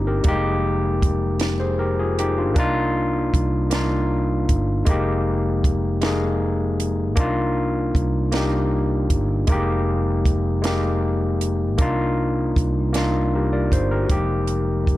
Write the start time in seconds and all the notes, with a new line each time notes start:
Already playing: G1 C4 D#4 G4
0.07 G4 A#4
0.23 F1 G3 A#3 D#4, kick, closed hi-hat
0.28 G#3 G4
1.02 kick, closed hi-hat
1.40 snare, closed hi-hat
1.60 G#4 C5
1.79 G4 A#4
2.00 F4 G#4
2.19 D#4 G4, closed hi-hat
2.38 D4 F4
2.54 C2 A#3 D4 D#4, kick, closed hi-hat
2.59 F4
3.34 C2, kick, closed hi-hat
3.70 A#3 D4 D#4, snare, closed hi-hat
3.75 F4
4.49 G1, kick, closed hi-hat
4.85 F1 G#3 A#3 D#4, kick, closed hi-hat
4.90 G4
5.64 kick, closed hi-hat
6.01 G#3 A#3 D#4, snare, closed hi-hat
6.06 G#4
6.80 closed hi-hat
7.16 C2 A#3 D4 D#4, kick, closed hi-hat
7.20 F4
7.95 C2, kick, closed hi-hat
8.32 A#3 D4 D#4, snare, closed hi-hat
8.36 G4
9.10 G1, kick, closed hi-hat
9.47 F1 G#3 A#3 D#4, kick, closed hi-hat
9.52 G4
10.26 kick, closed hi-hat
10.61 G#3 A#3 D#4, snare, closed hi-hat
10.66 G4
11.41 closed hi-hat
11.78 C2 A#3 D4 D#4, kick, closed hi-hat
11.82 F4
12.56 C2, kick, closed hi-hat
12.93 A#3 D4 D#4, snare, closed hi-hat
12.98 F4
13.35 G4 A#4
13.53 A#4 D5
13.72 G1 C5, kick, closed hi-hat
13.91 G4 A#4
14.02 F#4
14.09 F1 F3 G#3 A#3 D#4 G4, kick, closed hi-hat
14.47 closed hi-hat
14.87 kick, closed hi-hat